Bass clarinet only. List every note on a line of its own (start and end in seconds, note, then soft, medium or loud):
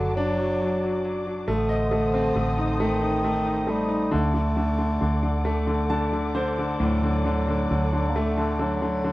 0.00 0.17 D3 medium
0.15 1.15 F#3 loud
1.49 2.76 D3 loud
2.81 3.71 D#3 loud
3.70 4.14 G3 medium
4.12 5.91 A3 medium
6.83 8.11 F#3 medium
8.09 8.18 A#3 medium
8.17 8.63 A3 medium
8.62 9.12 F#3 medium